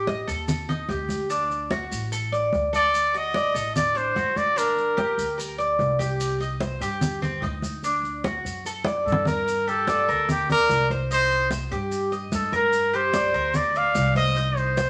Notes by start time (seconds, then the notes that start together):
Already playing: A1
0.07 D#5, high conga, maracas
0.28 D#2 A4, high conga, maracas
0.48 high conga, low conga, maracas
0.69 D#4, high conga, low conga, maracas
0.89 D2 G4, high conga, maracas
1.09 high conga, maracas
1.29 D4, high conga, maracas
1.50 high conga, maracas
1.71 F#4, high conga, maracas
1.92 A1, high conga, maracas
2.12 A4, high conga, maracas
2.32 D5, high conga, maracas
2.53 D2, high conga, maracas
2.73 A4 D5, high conga, maracas
2.94 high conga, maracas
3.14 F#4 D#5, high conga, maracas
3.34 D5, high conga, maracas
3.54 A1 A4, high conga, maracas
3.76 D5, high conga, low conga, maracas
3.95 D4 C5, high conga, maracas
4.15 G1 F#4, high conga, maracas
4.36 D5, high conga, maracas
4.56 D4 A#4, high conga, maracas
4.77 high conga, maracas
4.97 G4, high conga, maracas
5.18 D2, high conga, maracas
5.38 A#4, high conga, maracas
5.58 D5, high conga, maracas
5.79 C2, high conga, maracas
5.99 G4, high conga, maracas
6.20 high conga, maracas
6.40 D#4, high conga, maracas
6.60 C5, high conga, maracas
6.81 G2 G4, high conga, maracas
7.01 high conga, low conga, maracas
7.22 C4, high conga, low conga, maracas
7.42 D2 D#4, high conga, maracas
7.62 high conga, maracas
7.83 D4, high conga, maracas
8.03 high conga, maracas
8.24 F#4, high conga, maracas
8.44 F#2, high conga, maracas
8.65 A4, high conga, maracas
8.84 D5, high conga, maracas
9.06 G2 A4, maracas
9.12 low conga
9.25 A#4, low conga, maracas
9.46 high conga, maracas
9.67 G4 A4, high conga, maracas
9.87 D5, high conga, maracas
10.08 D2 A#4, high conga, maracas
10.29 G4, high conga, low conga, maracas
10.49 A#4 D5, high conga, low conga, maracas
10.69 C2, high conga, maracas
10.90 C5, high conga, maracas
11.11 D#4 C5, high conga, maracas
11.31 high conga, maracas
11.51 C5, high conga, maracas
11.71 G2 G4, high conga, maracas
11.92 high conga, maracas
12.12 D#5, high conga, maracas
12.32 G2 A4, high conga, maracas
12.52 A#4, high conga, maracas
12.73 high conga, maracas
12.93 G4 C5, high conga, maracas
13.13 D5, high conga, maracas
13.34 D2 A#4, high conga, maracas
13.54 D5, high conga, low conga, maracas
13.75 D5 F5, high conga, maracas
13.95 C2, high conga, maracas
14.15 C5 D#5, high conga, maracas
14.36 D#4, high conga, maracas
14.57 C5, high conga, maracas
14.77 C5, high conga, maracas